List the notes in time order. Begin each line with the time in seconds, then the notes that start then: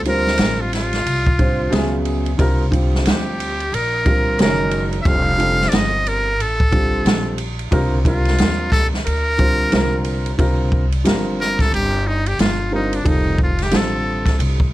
Already playing: D2
0.05 D3 G3 C4 F4 A#4 C5, ride
0.27 snare
0.38 A1, snare, hi-hat pedal, ride
0.61 F4
0.73 F4, snare, ride
0.93 snare, ride
1.06 C2, ride
1.27 kick
1.38 D3 G3 C4 F4 C5, kick, ride
1.71 C#2 C#3 F#3 B3 G#4 E5, snare, hi-hat pedal, ride
2.05 ride
2.26 ride
2.37 C2 D3 G3 C4 F4 A#4, kick, ride
2.70 D3 G3 C4 F4 G4, kick, ride
2.95 snare
3.05 D2 G4, snare, hi-hat pedal, ride
3.40 ride
3.60 ride
3.72 A#1 A#4, ride
4.04 D3 G3 C4 F4 A#4, kick, ride
4.38 F#1 D#3 G#3 C#4 F#4 A#4, snare, hi-hat pedal, ride
4.71 ride
4.92 ride
5.02 F1 D3 G3 C4 E5, kick, ride
5.06 F4 A4 F5
5.37 D3 G3 C4 F4 A4, ride
5.61 snare
5.69 G1 D5, hi-hat pedal, ride
5.73 D#5, snare
6.06 A#4, ride
6.38 A1 A4, ride
6.60 kick
6.71 D3 G3 C4 F4 G4, kick, ride
7.05 A#1, snare, hi-hat pedal, ride
7.38 ride
7.59 ride
7.71 C2 D3 G3 C4 F4 A#4, kick, ride
8.04 D3 G3 C4 F4 A#4, kick, ride
8.25 snare, ride
8.38 D#2, snare, hi-hat pedal, ride
8.72 A4, kick, snare, ride
8.94 snare
9.06 D2 A#4, ride
9.38 D3 G3 C4 F4 C5, kick, ride
9.71 C2 D3 G3 C4 F4 A#4, snare, hi-hat pedal, ride
10.04 ride
10.26 ride
10.37 C2 D3 G3 C4 F4 A#4, kick, ride
10.72 kick
10.92 ride
11.04 G1 D3 G3 C4 F4 A#4, snare, hi-hat pedal, ride
11.41 A#4, snare
11.59 A4, kick, snare, ride
11.72 G1 G4, ride
12.07 D#4
12.26 G4, ride
12.39 G1 F4, snare, hi-hat pedal, ride
12.71 D3 G3 C4 D#4 F4 A#4
12.93 D4, ride
13.04 F1 D#3 G3 C4 F4 A4, kick, ride
13.08 D#4
13.38 kick
13.43 F4
13.58 snare, ride
13.63 G4
13.71 A1 D3 G3 C4 F4 A4, snare, hi-hat pedal, ride
13.76 A4
14.26 kick, snare, ride
14.39 C2, ride
14.60 kick